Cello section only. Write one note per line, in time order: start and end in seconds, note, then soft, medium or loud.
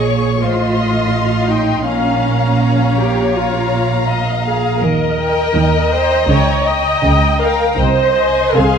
0.00 0.39 A#2 soft
0.42 1.86 A2 soft
1.86 4.77 A#2 soft
4.81 5.43 D#3 medium
5.55 6.17 D#3 medium
6.29 6.92 C#3 medium
7.04 7.67 C#3 medium
7.80 8.45 C3 medium
8.56 8.78 C3 medium